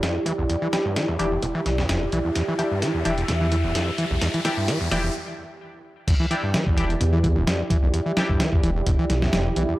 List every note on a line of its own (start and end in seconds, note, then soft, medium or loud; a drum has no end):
0.00 0.17 F2 medium
0.00 5.11 E4 medium
0.00 5.11 G4 medium
0.00 2.32 D5 medium
0.00 snare loud
0.00 closed hi-hat medium
0.00 riser medium
0.15 0.19 E2 medium
0.26 0.33 E3 loud
0.26 kick medium
0.26 closed hi-hat medium
0.38 0.47 B1 loud
0.38 0.44 E2 medium
0.50 0.56 E2 loud
0.50 closed hi-hat medium
0.62 0.68 E3 loud
0.73 0.77 E3 medium
0.73 0.82 D4 medium
0.73 0.82 E4 medium
0.73 0.82 G4 medium
0.73 snare loud
0.73 closed hi-hat medium
0.85 0.98 G2 medium
0.85 kick medium
0.96 1.06 E3 medium
0.96 snare loud
0.96 closed hi-hat medium
1.08 1.17 E2 medium
1.08 kick medium
1.19 1.37 E1 loud
1.19 1.26 E3 loud
1.19 1.29 D4 medium
1.19 1.29 E4 medium
1.19 1.29 G4 loud
1.19 closed hi-hat medium
1.32 1.38 E2 medium
1.42 1.52 E1 medium
1.42 1.47 B2 medium
1.42 kick loud
1.42 closed hi-hat medium
1.55 1.61 E3 loud
1.66 1.84 B1 medium
1.66 1.70 E3 medium
1.66 snare soft
1.66 closed hi-hat medium
1.78 1.87 E2 medium
1.78 snare medium
1.89 2.07 E1 medium
1.89 2.03 F2 medium
1.89 snare loud
1.89 closed hi-hat medium
2.02 2.05 E2 medium
2.12 2.22 B1 medium
2.12 2.19 E3 loud
2.12 closed hi-hat medium
2.25 2.31 E2 medium
2.35 2.43 E2 loud
2.35 5.12 E5 medium
2.35 snare soft
2.35 closed hi-hat medium
2.48 2.54 E3 loud
2.59 2.63 E3 medium
2.59 2.68 D4 medium
2.59 2.68 E4 medium
2.59 2.68 G4 loud
2.59 closed hi-hat medium
2.72 2.84 G2 medium
2.82 2.92 E3 medium
2.82 snare medium
2.82 closed hi-hat medium
2.94 3.03 E2 medium
3.05 3.23 E1 loud
3.05 3.12 E3 loud
3.05 3.15 D4 medium
3.05 3.15 E4 medium
3.05 3.15 G4 loud
3.05 closed hi-hat medium
3.18 3.24 E2 medium
3.18 closed hi-hat soft
3.28 3.66 E2 medium
3.28 3.33 B2 medium
3.28 snare medium
3.28 closed hi-hat medium
3.41 3.47 E3 loud
3.52 3.56 E3 medium
3.52 closed hi-hat medium
3.64 3.72 D1 loud
3.64 3.73 E2 medium
3.75 3.89 F2 medium
3.75 snare medium
3.75 closed hi-hat medium
3.88 3.91 E2 medium
3.98 4.05 E3 loud
3.98 closed hi-hat medium
4.11 4.19 B1 loud
4.11 4.17 E2 medium
4.21 4.29 E2 loud
4.21 snare medium
4.21 closed hi-hat medium
4.34 4.40 E3 loud
4.34 closed hi-hat soft
4.45 4.49 E3 medium
4.45 4.54 D4 medium
4.45 4.54 E4 medium
4.45 4.54 G4 medium
4.45 snare medium
4.45 closed hi-hat medium
4.57 4.70 G2 medium
4.68 4.79 E3 medium
4.68 snare medium
4.68 closed hi-hat medium
4.81 4.90 E2 medium
4.91 5.09 E1 loud
4.91 4.98 E3 loud
4.91 5.01 D4 loud
4.91 5.01 E4 medium
4.91 5.01 G4 loud
4.91 snare medium
4.91 closed hi-hat medium
5.04 5.10 E2 medium
6.07 6.14 E2 loud
6.07 9.79 E4 medium
6.07 9.79 G4 medium
6.07 9.79 D5 medium
6.07 kick loud
6.07 closed hi-hat medium
6.07 crash medium
6.20 6.26 E3 loud
6.31 6.35 E3 medium
6.31 6.40 D4 medium
6.31 6.40 E4 medium
6.31 6.40 G4 medium
6.31 closed hi-hat medium
6.43 6.55 G2 medium
6.54 6.64 E3 medium
6.54 snare loud
6.54 closed hi-hat medium
6.66 6.75 E2 medium
6.66 kick loud
6.77 6.95 E1 loud
6.77 6.84 E3 loud
6.77 6.87 D4 loud
6.77 6.87 E4 medium
6.77 6.87 G4 loud
6.77 closed hi-hat medium
6.89 6.96 E2 medium
6.89 closed hi-hat soft
7.00 7.38 E2 medium
7.00 7.04 B2 medium
7.00 closed hi-hat medium
7.13 7.19 E3 loud
7.23 7.28 E3 medium
7.23 kick medium
7.23 closed hi-hat medium
7.36 7.44 D1 loud
7.36 7.45 E2 medium
7.46 7.61 F2 medium
7.46 snare loud
7.46 closed hi-hat medium
7.59 7.63 E2 medium
7.70 7.77 E3 loud
7.70 kick loud
7.70 closed hi-hat medium
7.83 7.91 B1 loud
7.83 7.89 E2 medium
7.94 8.01 E2 loud
7.94 closed hi-hat medium
8.06 8.12 E3 loud
8.17 8.21 E3 medium
8.17 8.26 D4 medium
8.17 8.26 E4 medium
8.17 8.26 G4 loud
8.17 snare loud
8.17 closed hi-hat medium
8.29 8.41 G2 medium
8.29 kick medium
8.40 8.50 E3 medium
8.40 snare loud
8.40 closed hi-hat medium
8.53 8.62 E2 medium
8.53 kick loud
8.63 8.81 E1 loud
8.63 8.70 E3 loud
8.63 closed hi-hat medium
8.76 8.82 E2 medium
8.86 8.96 E1 medium
8.86 8.91 B2 medium
8.86 kick loud
8.86 closed hi-hat medium
8.99 9.05 E3 loud
9.10 9.28 B1 medium
9.10 9.14 E3 medium
9.10 snare soft
9.10 closed hi-hat medium
9.22 9.31 E2 medium
9.22 snare medium
9.33 9.51 E1 medium
9.33 9.47 F2 medium
9.33 snare loud
9.33 closed hi-hat medium
9.46 9.49 E2 medium
9.56 9.66 B1 medium
9.56 9.63 E3 loud
9.56 closed hi-hat medium
9.69 9.75 E2 medium